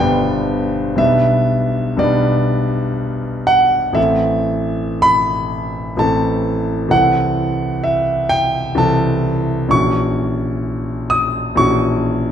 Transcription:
0.00 0.94 G1 medium
0.00 0.95 G3 medium
0.00 0.95 B3 medium
0.00 0.96 D4 medium
0.00 1.01 C5 medium
0.00 1.02 D5 medium
0.00 0.98 E5 medium
0.00 0.98 G5 medium
0.00 1.01 A5 loud
0.96 1.95 B1 medium
0.96 1.96 G3 soft
0.96 1.96 B3 soft
0.96 1.97 D4 soft
0.96 2.00 E5 medium
1.97 3.91 B1 medium
1.97 3.91 G3 medium
1.97 3.92 B3 medium
1.97 3.93 D4 medium
1.97 3.48 D5 medium
3.47 3.96 F#5 loud
3.93 5.93 A1 medium
3.93 5.93 E3 soft
3.93 5.93 C4 soft
3.93 5.94 A4 soft
3.93 5.02 E5 medium
5.02 5.98 B5 loud
5.97 6.88 A1 medium
5.97 6.88 E3 soft
5.97 6.88 C4 soft
5.97 6.89 A4 soft
5.97 6.92 A5 medium
6.88 8.73 C2 medium
6.88 8.74 E3 soft
6.88 8.74 C4 soft
6.88 8.74 A4 soft
6.88 7.84 F#5 loud
7.84 8.31 E5 medium
8.29 8.77 G5 loud
8.75 9.67 C2 medium
8.75 9.68 E3 medium
8.75 9.68 C4 medium
8.75 9.69 A4 soft
8.75 9.71 A5 medium
9.69 11.53 A#1 medium
9.69 11.53 E3 soft
9.69 11.53 C#4 soft
9.69 11.54 F#4 soft
9.69 11.11 C#6 loud
11.10 11.58 D#6 loud
11.55 12.32 A#1 medium
11.55 12.32 E3 soft
11.55 12.32 C#4 medium
11.55 12.32 F#4 medium
11.55 12.32 C#6 loud

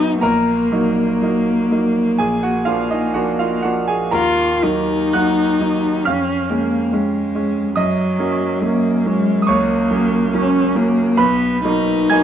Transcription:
0.00 0.24 F#2 medium
0.00 0.24 F#3 soft
0.00 0.25 B3 soft
0.00 0.21 D#4 medium
0.00 0.25 D#4 soft
0.00 0.18 F#5 medium
0.00 0.21 F#6 medium
0.21 0.69 A#1 soft
0.21 3.60 A#3 medium
0.21 2.15 A#4 medium
0.21 2.18 A#5 medium
0.72 1.17 F#3 soft
0.72 1.17 A#3 soft
0.72 1.18 D#4 soft
1.22 1.67 F#3 soft
1.22 1.67 A#3 soft
1.22 1.67 D#4 soft
1.72 2.15 F#3 soft
1.72 2.15 A#3 soft
1.72 2.15 D#4 soft
2.18 2.66 A#1 soft
2.18 2.41 G#4 medium
2.18 2.42 G#5 medium
2.43 2.65 F#4 soft
2.43 2.67 F#5 medium
2.65 3.10 F3 soft
2.65 3.11 A#3 soft
2.65 3.11 D4 soft
2.65 2.88 F4 soft
2.65 2.90 F5 medium
2.91 3.14 D#4 soft
2.91 3.15 D#5 medium
3.14 3.60 F3 soft
3.14 3.60 A#3 soft
3.14 3.60 D4 soft
3.14 3.37 F#4 medium
3.14 3.39 F#5 medium
3.39 3.63 F4 soft
3.39 3.64 F5 medium
3.62 4.09 F3 soft
3.62 4.10 A#3 soft
3.62 4.10 D4 soft
3.62 3.87 F#4 soft
3.62 3.88 F#5 medium
3.88 4.12 G#4 soft
3.88 4.13 G#5 medium
4.11 4.62 D#2 soft
4.11 4.65 F4 medium
4.11 5.10 A#4 medium
4.11 5.14 A#5 medium
4.63 5.10 F#3 soft
4.63 5.10 A#3 soft
4.63 6.08 D#4 medium
4.63 5.10 D#4 soft
5.13 5.58 F#3 soft
5.13 5.58 A#3 soft
5.13 5.58 D#4 soft
5.13 6.02 F#5 medium
5.13 6.06 F#6 medium
5.61 6.02 F#3 soft
5.61 6.02 A#3 soft
5.61 6.02 D#4 soft
6.05 6.49 F2 soft
6.05 6.51 C#4 medium
6.05 7.74 F5 medium
6.05 7.77 F6 medium
6.50 6.88 G#3 soft
6.50 6.93 A#3 soft
6.50 6.89 C#4 soft
6.91 7.77 G#3 soft
6.91 7.31 G#3 soft
6.91 7.31 C#4 soft
7.35 7.74 G#3 soft
7.35 7.74 C#4 soft
7.76 8.18 F#2 soft
7.76 8.64 F#3 medium
7.76 9.38 D#5 medium
7.76 9.41 D#6 medium
8.19 8.58 F#3 soft
8.19 8.59 A#3 soft
8.19 8.59 C#4 soft
8.62 9.02 F#3 soft
8.62 9.07 A#3 medium
8.62 9.02 A#3 soft
8.62 9.02 C#4 soft
9.06 9.45 F#3 soft
9.06 9.51 G#3 medium
9.06 9.45 A#3 soft
9.06 9.45 C#4 soft
9.42 9.49 D#6 medium
9.47 9.90 C#2 soft
9.47 10.36 A#3 medium
9.47 11.15 C#5 medium
9.47 11.18 C#6 medium
9.91 10.30 F#3 soft
9.91 10.30 A#3 soft
9.91 10.30 C#4 soft
10.34 10.72 F#3 soft
10.34 10.73 A#3 soft
10.34 10.78 C#4 medium
10.34 10.73 C#4 soft
10.75 11.15 F#3 soft
10.75 11.15 A#3 soft
10.75 11.21 A#3 medium
10.75 11.15 C#4 soft
11.17 11.63 B1 medium
11.17 11.65 B3 medium
11.17 12.08 B4 medium
11.17 12.12 B5 medium
11.65 12.08 F#3 soft
11.65 12.08 A#3 soft
11.65 12.09 D#4 soft
11.65 12.23 D#4 medium
12.10 12.23 F#3 soft
12.10 12.23 A#3 soft
12.10 12.23 D#4 soft
12.10 12.23 G#5 medium
12.10 12.23 G#6 medium

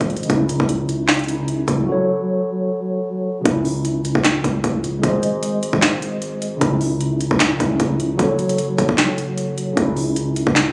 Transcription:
0.00 0.29 G#1 loud
0.00 0.24 G#3 medium
0.00 0.26 G#4 medium
0.00 0.27 C5 medium
0.00 0.29 D#5 medium
0.00 kick medium
0.00 closed hi-hat soft
0.10 closed hi-hat soft
0.17 closed hi-hat medium
0.23 1.24 C#3 medium
0.23 closed hi-hat medium
0.28 0.59 C#2 loud
0.28 1.26 C#4 medium
0.28 1.27 D#4 medium
0.28 kick loud
0.28 closed hi-hat medium
0.34 1.29 E4 medium
0.49 closed hi-hat medium
0.60 1.64 C#2 loud
0.60 kick loud
0.69 closed hi-hat medium
0.89 closed hi-hat medium
1.08 snare loud
1.08 clap medium
1.08 closed hi-hat medium
1.14 closed hi-hat medium
1.19 closed hi-hat medium
1.24 1.87 C#3 medium
1.24 closed hi-hat soft
1.28 1.87 C#4 medium
1.28 1.88 D#4 medium
1.28 1.89 E4 medium
1.28 closed hi-hat medium
1.48 closed hi-hat medium
1.68 1.87 C#2 loud
1.68 kick loud
1.68 closed hi-hat medium
1.83 3.40 F#3 medium
1.83 3.42 F#4 medium
1.89 3.43 A4 medium
1.89 3.45 C#5 medium
3.41 4.98 C#3 medium
3.41 5.00 C#4 medium
3.45 4.12 C#2 loud
3.45 5.01 D#4 medium
3.45 kick loud
3.45 closed hi-hat medium
3.50 5.03 E4 medium
3.65 open hi-hat medium
3.85 closed hi-hat medium
4.05 closed hi-hat medium
4.15 4.43 C#2 loud
4.15 kick loud
4.24 snare loud
4.24 clap medium
4.24 closed hi-hat medium
4.44 4.63 C#2 loud
4.44 kick medium
4.44 closed hi-hat medium
4.64 5.02 C#2 loud
4.64 kick medium
4.64 closed hi-hat medium
4.84 closed hi-hat medium
4.99 6.56 G#3 medium
4.99 6.57 G#4 medium
5.03 5.70 G#1 loud
5.03 6.59 C5 medium
5.03 kick loud
5.03 closed hi-hat medium
5.08 6.60 D#5 medium
5.23 closed hi-hat medium
5.43 closed hi-hat medium
5.63 closed hi-hat medium
5.73 6.58 G#1 loud
5.73 kick loud
5.82 snare loud
5.82 clap medium
5.82 closed hi-hat medium
6.02 closed hi-hat medium
6.22 closed hi-hat medium
6.42 closed hi-hat medium
6.57 7.56 C#3 medium
6.57 7.57 C#4 medium
6.61 7.28 C#2 loud
6.61 7.59 D#4 medium
6.61 kick loud
6.61 closed hi-hat medium
6.66 7.60 E4 medium
6.81 open hi-hat medium
7.01 closed hi-hat medium
7.21 closed hi-hat medium
7.31 7.59 C#2 loud
7.31 kick loud
7.40 snare loud
7.40 clap loud
7.40 closed hi-hat medium
7.58 7.79 C#2 loud
7.58 8.18 C#3 medium
7.58 8.19 C#4 medium
7.58 8.20 D#4 medium
7.58 kick loud
7.58 closed hi-hat medium
7.62 8.20 E4 medium
7.80 8.18 C#2 loud
7.80 kick medium
7.80 closed hi-hat medium
8.00 closed hi-hat medium
8.15 9.72 F#3 medium
8.15 9.73 F#4 medium
8.19 8.76 F#1 loud
8.19 9.75 A4 medium
8.19 kick loud
8.19 closed hi-hat medium
8.24 9.76 C#5 medium
8.39 closed hi-hat soft
8.39 open hi-hat medium
8.49 closed hi-hat medium
8.58 closed hi-hat medium
8.78 8.88 F#1 loud
8.78 kick loud
8.78 closed hi-hat medium
8.89 9.74 F#1 loud
8.89 kick loud
8.98 snare loud
8.98 clap medium
8.98 closed hi-hat medium
9.18 closed hi-hat medium
9.38 closed hi-hat medium
9.58 closed hi-hat medium
9.73 10.72 C#3 medium
9.73 10.72 C#4 medium
9.77 10.44 C#2 loud
9.77 10.72 D#4 medium
9.77 kick loud
9.77 closed hi-hat medium
9.82 10.72 E4 medium
9.97 open hi-hat medium
10.16 closed hi-hat medium
10.36 closed hi-hat medium
10.47 10.72 C#2 loud
10.47 kick loud
10.56 snare loud
10.56 clap medium
10.56 closed hi-hat medium

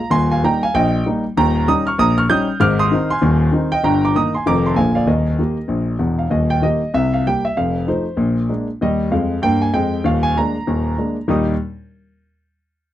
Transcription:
0.00 0.10 F5 medium
0.00 0.12 A#5 loud
0.10 0.37 D#1 medium
0.10 0.37 D#2 medium
0.10 0.29 G#5 medium
0.10 0.30 C6 loud
0.31 0.42 F5 medium
0.31 0.43 G#5 medium
0.44 0.60 G3 medium
0.44 0.60 A#3 soft
0.44 0.60 D#4 medium
0.44 0.61 G5 medium
0.44 0.62 A#5 medium
0.63 0.74 F5 medium
0.63 0.74 G#5 medium
0.74 1.00 A#1 medium
0.74 1.00 A#2 medium
0.74 1.04 D#5 medium
0.74 1.05 G5 loud
1.06 1.23 G3 medium
1.06 1.23 A#3 medium
1.06 1.23 D#4 medium
1.37 1.63 D#1 medium
1.37 1.63 D#2 medium
1.37 1.66 G5 medium
1.37 1.67 A#5 loud
1.68 1.84 G3 medium
1.68 1.84 C#4 soft
1.68 1.85 D#4 medium
1.68 1.85 A#5 medium
1.68 1.86 D#6 loud
1.87 1.98 C#6 medium
1.87 1.98 F6 medium
1.98 2.24 A#1 medium
1.98 2.25 A#2 medium
1.98 2.17 A#5 medium
1.98 2.17 D#6 loud
2.18 2.29 C#6 medium
2.18 2.29 F6 loud
2.29 2.46 G3 medium
2.29 2.46 C#4 medium
2.29 2.46 D#4 medium
2.29 2.58 D#6 medium
2.29 2.60 G6 loud
2.60 2.86 G#1 medium
2.60 2.86 G#2 medium
2.60 2.78 D6 medium
2.60 2.79 F6 loud
2.79 3.08 C6 medium
2.79 3.10 D#6 loud
2.92 3.08 D#3 medium
2.92 3.09 C4 medium
2.92 3.09 D#4 medium
3.10 3.69 G#5 medium
3.10 3.72 C6 medium
3.22 3.48 D#1 medium
3.22 3.48 D#2 medium
3.52 3.69 D#3 medium
3.52 3.70 C4 soft
3.52 3.71 D#4 medium
3.72 3.83 D#5 medium
3.72 3.84 G5 loud
3.84 4.10 G1 medium
3.84 4.10 G2 medium
3.84 4.02 G5 medium
3.84 4.03 A#5 medium
4.05 4.15 A#5 medium
4.05 4.16 D6 medium
4.15 4.32 D#3 soft
4.15 4.32 A#3 soft
4.15 4.33 D#4 soft
4.15 4.33 A#5 medium
4.15 4.34 D#6 medium
4.35 4.46 G#5 medium
4.35 4.46 C6 medium
4.46 4.72 F1 medium
4.46 4.72 F2 medium
4.46 4.63 D#3 soft
4.46 4.64 A3 soft
4.46 4.64 F4 soft
4.46 4.64 A#5 medium
4.46 4.65 D6 loud
4.66 4.77 A5 medium
4.66 4.77 C6 medium
4.76 5.02 A#1 medium
4.76 5.02 A#2 medium
4.76 4.93 D3 soft
4.76 4.94 A#3 soft
4.76 4.94 F4 medium
4.76 4.94 F5 medium
4.76 4.95 G#5 medium
4.95 5.07 D5 medium
4.95 5.07 F5 medium
5.06 5.33 D#1 medium
5.06 5.34 D#2 medium
5.06 5.97 A#4 soft
5.06 6.00 D#5 medium
5.39 5.56 D#3 soft
5.39 5.56 A#3 soft
5.39 5.57 G4 soft
5.68 5.95 A#1 medium
5.68 5.95 A#2 medium
5.99 6.25 E1 medium
5.99 6.24 E2 medium
6.19 6.31 F5 medium
6.30 6.58 D#1 medium
6.30 6.57 D#2 medium
6.30 6.50 D#5 medium
6.50 6.63 G5 medium
6.62 6.79 D#3 soft
6.62 6.80 A#3 soft
6.62 6.80 G4 soft
6.62 6.94 D#5 medium
6.94 7.20 C2 medium
6.94 7.20 C3 medium
6.94 7.13 E5 medium
7.14 7.25 F5 medium
7.27 7.43 G3 soft
7.27 7.44 A#3 soft
7.27 7.44 G4 soft
7.27 7.45 G5 medium
7.45 7.56 E5 medium
7.57 7.83 F1 medium
7.57 7.83 F2 medium
7.57 7.88 F5 medium
7.87 8.04 F3 soft
7.87 8.05 A3 soft
7.87 8.05 D#4 soft
7.87 8.50 C5 medium
8.17 8.44 A#1 medium
8.17 8.44 A#2 medium
8.49 8.66 G#3 soft
8.49 8.67 A#3 soft
8.49 8.67 D4 soft
8.81 9.06 D#2 medium
8.81 9.07 G3 medium
8.81 9.12 D#5 medium
9.12 9.36 F2 medium
9.12 9.37 G#3 medium
9.12 9.43 F5 medium
9.42 9.67 G2 medium
9.42 9.68 A#3 medium
9.42 9.62 G5 loud
9.62 9.74 G#5 medium
9.73 9.98 F2 medium
9.73 9.99 G#3 medium
9.73 10.05 G5 medium
10.04 10.31 D#1 medium
10.04 10.31 D#2 medium
10.04 10.24 F5 medium
10.23 10.36 G#5 loud
10.37 10.54 G#3 soft
10.37 10.55 A#3 soft
10.37 10.55 D4 soft
10.37 11.30 A#5 medium
10.67 10.94 D#1 medium
10.67 10.94 D#2 medium
10.98 11.15 G#3 soft
10.98 11.16 A#3 soft
10.98 11.16 D4 soft
11.28 11.48 D#2 medium
11.28 11.48 A#2 medium
11.28 11.48 G3 medium
11.28 11.49 A#3 medium
11.28 11.49 D#4 medium
11.28 11.49 G4 medium
11.28 11.50 D#6 medium

